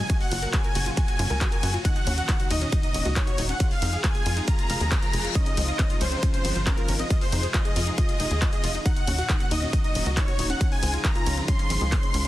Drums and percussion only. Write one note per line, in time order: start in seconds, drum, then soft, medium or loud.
0.10 kick loud
0.10 closed hi-hat medium
0.10 ride medium
0.21 open hi-hat medium
0.31 open hi-hat loud
0.31 ride medium
0.42 closed hi-hat medium
0.53 kick loud
0.53 clap loud
0.53 closed hi-hat medium
0.53 ride medium
0.64 closed hi-hat medium
0.75 open hi-hat loud
0.75 ride medium
0.86 closed hi-hat medium
0.97 kick loud
0.97 closed hi-hat medium
0.97 ride medium
1.08 closed hi-hat medium
1.19 open hi-hat loud
1.19 ride medium
1.30 closed hi-hat medium
1.41 kick loud
1.41 clap loud
1.41 closed hi-hat medium
1.41 ride medium
1.52 closed hi-hat medium
1.63 open hi-hat loud
1.63 ride medium
1.74 closed hi-hat medium
1.85 kick loud
1.85 closed hi-hat loud
1.85 ride medium
1.96 closed hi-hat medium
2.07 open hi-hat loud
2.07 ride medium
2.18 closed hi-hat medium
2.29 kick loud
2.29 clap loud
2.29 closed hi-hat loud
2.29 ride medium
2.40 closed hi-hat medium
2.51 open hi-hat loud
2.51 ride medium
2.62 closed hi-hat medium
2.72 kick loud
2.72 closed hi-hat loud
2.72 ride medium
2.83 closed hi-hat medium
2.94 open hi-hat loud
2.94 ride medium
3.05 closed hi-hat medium
3.16 kick loud
3.16 clap loud
3.16 closed hi-hat loud
3.16 ride medium
3.27 closed hi-hat medium
3.38 open hi-hat loud
3.38 ride medium
3.49 closed hi-hat medium
3.60 kick loud
3.60 closed hi-hat loud
3.60 ride medium
3.71 open hi-hat medium
3.82 open hi-hat loud
3.82 ride medium
3.93 closed hi-hat medium
4.04 kick loud
4.04 clap loud
4.04 closed hi-hat loud
4.04 ride medium
4.15 closed hi-hat medium
4.26 open hi-hat loud
4.26 ride medium
4.37 closed hi-hat medium
4.48 kick loud
4.48 closed hi-hat loud
4.48 ride medium
4.59 closed hi-hat medium
4.70 open hi-hat loud
4.70 ride medium
4.81 closed hi-hat medium
4.92 kick loud
4.92 clap loud
4.92 closed hi-hat loud
4.92 ride medium
5.03 closed hi-hat medium
5.13 open hi-hat loud
5.13 ride medium
5.24 closed hi-hat medium
5.35 kick loud
5.35 closed hi-hat loud
5.35 ride medium
5.46 closed hi-hat medium
5.57 open hi-hat loud
5.57 ride medium
5.68 closed hi-hat medium
5.79 kick loud
5.79 clap loud
5.79 closed hi-hat loud
5.79 ride medium
5.90 closed hi-hat medium
6.01 open hi-hat loud
6.01 ride medium
6.12 closed hi-hat medium
6.23 kick loud
6.23 closed hi-hat loud
6.23 ride medium
6.34 closed hi-hat medium
6.45 open hi-hat loud
6.45 ride medium
6.56 closed hi-hat medium
6.67 kick loud
6.67 clap loud
6.67 closed hi-hat loud
6.67 ride medium
6.78 closed hi-hat medium
6.88 open hi-hat loud
6.88 ride medium
6.99 closed hi-hat medium
7.10 kick loud
7.10 closed hi-hat medium
7.10 ride medium
7.21 open hi-hat medium
7.32 open hi-hat loud
7.32 ride medium
7.43 closed hi-hat medium
7.54 kick loud
7.54 clap loud
7.54 closed hi-hat medium
7.54 ride medium
7.65 closed hi-hat medium
7.76 open hi-hat loud
7.76 ride medium
7.87 closed hi-hat medium
7.98 kick loud
7.98 closed hi-hat medium
7.98 ride medium
8.09 closed hi-hat medium
8.20 open hi-hat loud
8.20 ride medium
8.31 closed hi-hat medium
8.42 kick loud
8.42 clap loud
8.42 closed hi-hat loud
8.42 ride medium
8.53 closed hi-hat medium
8.64 open hi-hat loud
8.64 ride medium
8.75 closed hi-hat medium
8.86 kick loud
8.86 closed hi-hat medium
8.86 ride medium
8.96 closed hi-hat medium
9.07 open hi-hat loud
9.07 ride medium
9.19 closed hi-hat medium
9.29 kick loud
9.29 clap loud
9.29 closed hi-hat medium
9.29 ride medium
9.40 closed hi-hat medium
9.51 open hi-hat loud
9.51 ride medium
9.62 closed hi-hat medium
9.73 kick loud
9.73 closed hi-hat medium
9.73 ride medium
9.84 closed hi-hat medium
9.95 open hi-hat loud
9.95 ride medium
10.06 closed hi-hat medium
10.17 kick loud
10.17 clap loud
10.17 closed hi-hat medium
10.17 ride medium
10.28 closed hi-hat medium
10.39 open hi-hat loud
10.39 ride medium
10.50 closed hi-hat soft
10.61 kick loud
10.61 closed hi-hat medium
10.61 ride medium
10.72 open hi-hat medium
10.83 open hi-hat loud
10.83 ride medium
10.94 closed hi-hat medium
11.05 kick loud
11.05 clap loud
11.05 closed hi-hat medium
11.05 ride medium
11.15 closed hi-hat medium
11.26 open hi-hat loud
11.26 ride medium
11.37 closed hi-hat medium
11.48 kick loud
11.48 closed hi-hat medium
11.48 ride medium
11.59 closed hi-hat medium
11.70 open hi-hat loud
11.70 ride medium
11.81 closed hi-hat medium
11.92 kick loud
11.92 clap loud
11.92 closed hi-hat medium
11.92 ride medium
12.03 closed hi-hat medium
12.14 open hi-hat loud
12.14 ride medium